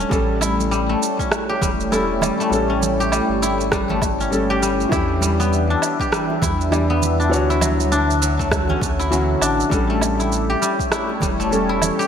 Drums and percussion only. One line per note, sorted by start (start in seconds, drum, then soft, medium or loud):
0.00 shaker soft
0.11 kick loud
0.11 shaker soft
0.41 high bongo soft
0.41 high conga medium
0.41 low woodblock medium
0.41 shaker medium
0.60 high conga medium
0.60 shaker soft
0.72 shaker soft
1.02 shaker medium
1.19 kick medium
1.19 shaker soft
1.32 cross-stick medium
1.32 low woodblock medium
1.32 shaker soft
1.50 high bongo medium
1.62 kick loud
1.62 high conga medium
1.62 low conga medium
1.62 shaker medium
1.80 shaker soft
1.92 high conga medium
1.92 shaker soft
2.21 low conga medium
2.21 low woodblock medium
2.21 shaker medium
2.41 shaker soft
2.53 shaker soft
2.81 high bongo soft
2.81 high conga medium
2.81 low conga medium
2.81 shaker medium
3.00 high conga medium
3.00 shaker soft
3.12 low woodblock medium
3.12 shaker soft
3.43 shaker medium
3.61 shaker soft
3.72 kick medium
3.72 cross-stick medium
3.72 high conga medium
3.72 shaker soft
3.90 low conga medium
4.02 kick loud
4.02 low woodblock medium
4.02 shaker medium
4.21 shaker soft
4.33 shaker soft
4.63 shaker medium
4.80 shaker soft
4.92 kick loud
4.92 low woodblock medium
4.92 shaker soft
5.21 high bongo soft
5.21 high conga medium
5.21 shaker medium
5.40 high conga medium
5.40 shaker soft
5.53 shaker soft
5.82 low woodblock medium
5.82 shaker medium
6.00 kick medium
6.00 shaker soft
6.13 cross-stick medium
6.13 shaker soft
6.30 high bongo soft
6.42 kick medium
6.42 high conga medium
6.42 low conga medium
6.42 shaker medium
6.61 shaker soft
6.72 high conga medium
6.72 low woodblock medium
6.72 shaker soft
7.02 low conga medium
7.02 shaker medium
7.21 shaker soft
7.33 shaker soft
7.50 shaker soft
7.61 high bongo soft
7.61 high conga medium
7.61 low conga medium
7.61 low woodblock medium
7.61 shaker medium
7.80 high conga medium
7.80 shaker soft
7.92 shaker soft
8.10 shaker soft
8.22 shaker medium
8.39 kick medium
8.39 shaker soft
8.51 kick loud
8.51 cross-stick medium
8.51 high conga medium
8.51 low woodblock medium
8.51 shaker soft
8.69 low conga medium
8.82 kick loud
8.82 shaker medium
9.00 shaker soft
9.13 shaker soft
9.41 low woodblock medium
9.41 shaker medium
9.60 shaker soft
9.71 kick loud
9.71 shaker soft
10.01 high bongo soft
10.01 high conga medium
10.01 low woodblock medium
10.01 shaker medium
10.19 high conga medium
10.19 shaker soft
10.32 shaker soft
10.63 shaker medium
10.79 kick medium
10.79 shaker soft
10.92 cross-stick medium
10.92 low woodblock medium
10.92 shaker soft
11.09 high bongo soft
11.20 kick medium
11.20 high conga medium
11.20 low conga medium
11.20 shaker medium
11.41 shaker soft
11.51 high conga medium
11.51 shaker soft
11.82 low conga medium
11.82 low woodblock medium
11.82 shaker medium
12.01 shaker soft